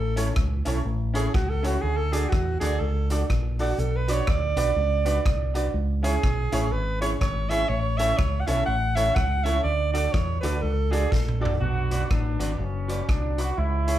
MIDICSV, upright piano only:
0, 0, Header, 1, 2, 480
1, 0, Start_track
1, 0, Tempo, 489396
1, 1795, Time_signature, 4, 2, 24, 8
1, 13720, End_track
2, 0, Start_track
2, 0, Title_t, "Upright piano"
2, 0, Program_c, 0, 0
2, 159, Note_on_c, 0, 61, 96
2, 164, Note_on_c, 0, 64, 83
2, 168, Note_on_c, 0, 69, 82
2, 173, Note_on_c, 0, 73, 100
2, 283, Note_off_c, 0, 61, 0
2, 286, Note_off_c, 0, 64, 0
2, 288, Note_off_c, 0, 69, 0
2, 290, Note_off_c, 0, 73, 0
2, 639, Note_on_c, 0, 61, 102
2, 641, Note_on_c, 0, 64, 93
2, 648, Note_on_c, 0, 69, 96
2, 652, Note_on_c, 0, 73, 111
2, 763, Note_off_c, 0, 61, 0
2, 764, Note_off_c, 0, 64, 0
2, 768, Note_off_c, 0, 69, 0
2, 770, Note_off_c, 0, 73, 0
2, 1114, Note_on_c, 0, 61, 89
2, 1116, Note_on_c, 0, 64, 80
2, 1122, Note_on_c, 0, 69, 74
2, 1126, Note_on_c, 0, 73, 91
2, 1241, Note_off_c, 0, 61, 0
2, 1242, Note_off_c, 0, 64, 0
2, 1245, Note_off_c, 0, 69, 0
2, 1246, Note_off_c, 0, 73, 0
2, 1597, Note_on_c, 0, 61, 86
2, 1603, Note_on_c, 0, 64, 82
2, 1607, Note_on_c, 0, 69, 78
2, 1612, Note_on_c, 0, 73, 96
2, 1722, Note_off_c, 0, 61, 0
2, 1725, Note_off_c, 0, 64, 0
2, 1727, Note_off_c, 0, 69, 0
2, 1729, Note_off_c, 0, 73, 0
2, 2079, Note_on_c, 0, 62, 90
2, 2081, Note_on_c, 0, 66, 80
2, 2086, Note_on_c, 0, 69, 78
2, 2089, Note_on_c, 0, 74, 98
2, 2203, Note_off_c, 0, 62, 0
2, 2204, Note_off_c, 0, 66, 0
2, 2207, Note_off_c, 0, 69, 0
2, 2208, Note_off_c, 0, 74, 0
2, 2557, Note_on_c, 0, 62, 100
2, 2561, Note_on_c, 0, 66, 93
2, 2564, Note_on_c, 0, 69, 89
2, 2568, Note_on_c, 0, 74, 101
2, 2682, Note_off_c, 0, 62, 0
2, 2684, Note_off_c, 0, 66, 0
2, 2685, Note_off_c, 0, 69, 0
2, 2687, Note_off_c, 0, 74, 0
2, 3042, Note_on_c, 0, 62, 90
2, 3045, Note_on_c, 0, 66, 76
2, 3049, Note_on_c, 0, 69, 78
2, 3053, Note_on_c, 0, 74, 99
2, 3164, Note_off_c, 0, 62, 0
2, 3166, Note_off_c, 0, 66, 0
2, 3168, Note_off_c, 0, 69, 0
2, 3170, Note_off_c, 0, 74, 0
2, 3522, Note_on_c, 0, 62, 91
2, 3526, Note_on_c, 0, 66, 79
2, 3531, Note_on_c, 0, 69, 77
2, 3536, Note_on_c, 0, 74, 96
2, 3644, Note_off_c, 0, 62, 0
2, 3646, Note_off_c, 0, 66, 0
2, 3649, Note_off_c, 0, 69, 0
2, 3651, Note_off_c, 0, 74, 0
2, 4002, Note_on_c, 0, 62, 89
2, 4004, Note_on_c, 0, 66, 90
2, 4011, Note_on_c, 0, 71, 85
2, 4016, Note_on_c, 0, 74, 105
2, 4124, Note_off_c, 0, 62, 0
2, 4125, Note_off_c, 0, 66, 0
2, 4129, Note_off_c, 0, 71, 0
2, 4131, Note_off_c, 0, 74, 0
2, 4480, Note_on_c, 0, 62, 102
2, 4481, Note_on_c, 0, 66, 98
2, 4487, Note_on_c, 0, 71, 97
2, 4491, Note_on_c, 0, 74, 114
2, 4603, Note_off_c, 0, 62, 0
2, 4604, Note_off_c, 0, 66, 0
2, 4607, Note_off_c, 0, 71, 0
2, 4609, Note_off_c, 0, 74, 0
2, 4955, Note_on_c, 0, 62, 93
2, 4959, Note_on_c, 0, 66, 74
2, 4963, Note_on_c, 0, 71, 85
2, 4968, Note_on_c, 0, 74, 95
2, 5081, Note_off_c, 0, 62, 0
2, 5082, Note_off_c, 0, 66, 0
2, 5085, Note_off_c, 0, 71, 0
2, 5087, Note_off_c, 0, 74, 0
2, 5436, Note_on_c, 0, 62, 93
2, 5440, Note_on_c, 0, 66, 80
2, 5445, Note_on_c, 0, 71, 85
2, 5448, Note_on_c, 0, 74, 97
2, 5561, Note_off_c, 0, 62, 0
2, 5563, Note_off_c, 0, 66, 0
2, 5566, Note_off_c, 0, 71, 0
2, 5567, Note_off_c, 0, 74, 0
2, 5911, Note_on_c, 0, 61, 94
2, 5914, Note_on_c, 0, 64, 83
2, 5919, Note_on_c, 0, 68, 84
2, 5925, Note_on_c, 0, 73, 100
2, 6039, Note_off_c, 0, 61, 0
2, 6040, Note_off_c, 0, 64, 0
2, 6042, Note_off_c, 0, 68, 0
2, 6045, Note_off_c, 0, 73, 0
2, 6396, Note_on_c, 0, 61, 101
2, 6399, Note_on_c, 0, 64, 95
2, 6402, Note_on_c, 0, 68, 98
2, 6407, Note_on_c, 0, 73, 121
2, 6521, Note_off_c, 0, 61, 0
2, 6522, Note_off_c, 0, 64, 0
2, 6524, Note_off_c, 0, 68, 0
2, 6526, Note_off_c, 0, 73, 0
2, 6874, Note_on_c, 0, 61, 89
2, 6876, Note_on_c, 0, 64, 76
2, 6882, Note_on_c, 0, 68, 85
2, 6884, Note_on_c, 0, 73, 99
2, 6999, Note_off_c, 0, 61, 0
2, 7001, Note_off_c, 0, 64, 0
2, 7004, Note_off_c, 0, 68, 0
2, 7005, Note_off_c, 0, 73, 0
2, 7357, Note_on_c, 0, 61, 88
2, 7359, Note_on_c, 0, 64, 88
2, 7363, Note_on_c, 0, 68, 85
2, 7367, Note_on_c, 0, 73, 100
2, 7481, Note_off_c, 0, 61, 0
2, 7482, Note_off_c, 0, 64, 0
2, 7484, Note_off_c, 0, 68, 0
2, 7486, Note_off_c, 0, 73, 0
2, 7836, Note_on_c, 0, 61, 100
2, 7841, Note_on_c, 0, 64, 84
2, 7843, Note_on_c, 0, 69, 88
2, 7848, Note_on_c, 0, 73, 103
2, 7960, Note_off_c, 0, 61, 0
2, 7963, Note_off_c, 0, 64, 0
2, 7964, Note_off_c, 0, 69, 0
2, 7967, Note_off_c, 0, 73, 0
2, 8312, Note_on_c, 0, 61, 109
2, 8319, Note_on_c, 0, 64, 92
2, 8321, Note_on_c, 0, 69, 97
2, 8325, Note_on_c, 0, 73, 106
2, 8438, Note_off_c, 0, 61, 0
2, 8442, Note_off_c, 0, 64, 0
2, 8443, Note_off_c, 0, 69, 0
2, 8445, Note_off_c, 0, 73, 0
2, 8789, Note_on_c, 0, 61, 94
2, 8792, Note_on_c, 0, 64, 84
2, 8798, Note_on_c, 0, 69, 84
2, 8799, Note_on_c, 0, 73, 96
2, 8917, Note_off_c, 0, 61, 0
2, 8918, Note_off_c, 0, 64, 0
2, 8921, Note_off_c, 0, 69, 0
2, 8922, Note_off_c, 0, 73, 0
2, 9266, Note_on_c, 0, 61, 94
2, 9270, Note_on_c, 0, 64, 87
2, 9274, Note_on_c, 0, 69, 86
2, 9278, Note_on_c, 0, 73, 99
2, 9396, Note_off_c, 0, 61, 0
2, 9397, Note_off_c, 0, 64, 0
2, 9399, Note_off_c, 0, 69, 0
2, 9401, Note_off_c, 0, 73, 0
2, 9745, Note_on_c, 0, 62, 88
2, 9748, Note_on_c, 0, 66, 91
2, 9753, Note_on_c, 0, 69, 90
2, 9756, Note_on_c, 0, 74, 104
2, 9875, Note_off_c, 0, 62, 0
2, 9876, Note_off_c, 0, 66, 0
2, 9879, Note_off_c, 0, 69, 0
2, 9880, Note_off_c, 0, 74, 0
2, 10229, Note_on_c, 0, 62, 99
2, 10234, Note_on_c, 0, 66, 95
2, 10238, Note_on_c, 0, 69, 92
2, 10238, Note_on_c, 0, 74, 109
2, 10357, Note_off_c, 0, 62, 0
2, 10360, Note_off_c, 0, 66, 0
2, 10361, Note_off_c, 0, 69, 0
2, 10362, Note_off_c, 0, 74, 0
2, 10704, Note_on_c, 0, 62, 94
2, 10707, Note_on_c, 0, 66, 80
2, 10712, Note_on_c, 0, 69, 84
2, 10715, Note_on_c, 0, 74, 100
2, 10835, Note_off_c, 0, 62, 0
2, 10836, Note_off_c, 0, 66, 0
2, 10839, Note_off_c, 0, 69, 0
2, 10840, Note_off_c, 0, 74, 0
2, 11185, Note_on_c, 0, 62, 85
2, 11190, Note_on_c, 0, 66, 82
2, 11193, Note_on_c, 0, 69, 82
2, 11196, Note_on_c, 0, 74, 111
2, 11316, Note_off_c, 0, 62, 0
2, 11318, Note_off_c, 0, 66, 0
2, 11320, Note_off_c, 0, 69, 0
2, 11321, Note_off_c, 0, 74, 0
2, 13720, End_track
0, 0, End_of_file